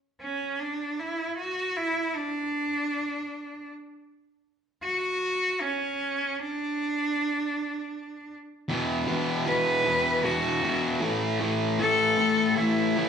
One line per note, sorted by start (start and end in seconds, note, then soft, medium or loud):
0.22 0.61 C#4 medium
0.60 1.01 D4 medium
0.99 1.37 E4 medium
1.38 1.78 F#4 medium
1.77 2.17 E4 medium
2.15 3.69 D4 medium
4.83 5.63 F#4 medium
5.61 6.40 C#4 medium
6.39 8.32 D4 medium
8.69 9.06 E2 medium
8.69 9.07 B2 medium
8.69 9.08 E3 medium
9.08 9.45 E2 medium
9.08 9.46 B2 medium
9.08 9.47 E3 medium
9.46 9.84 E2 medium
9.46 9.84 B2 medium
9.46 9.85 E3 medium
9.46 10.26 B4 loud
9.85 10.22 E2 medium
9.85 10.23 B2 medium
9.85 10.24 E3 medium
10.24 10.62 E2 medium
10.24 10.62 B2 medium
10.24 10.63 E3 medium
10.24 11.02 F#4 medium
10.63 11.00 E2 medium
10.63 11.00 B2 medium
10.63 11.02 E3 medium
11.01 11.39 A2 medium
11.01 11.40 E3 medium
11.01 11.40 A3 medium
11.40 11.78 A2 medium
11.40 11.79 E3 medium
11.40 11.80 A3 medium
11.79 12.16 A2 medium
11.79 12.18 E3 medium
11.79 12.18 A3 medium
11.79 12.58 A4 loud
12.17 12.55 A2 medium
12.17 12.57 E3 medium
12.17 12.57 A3 medium
12.56 12.95 A2 medium
12.56 12.96 E3 medium
12.56 12.96 A3 medium
12.56 13.09 E4 medium
12.96 13.09 A2 medium
12.96 13.09 E3 medium
12.96 13.09 A3 medium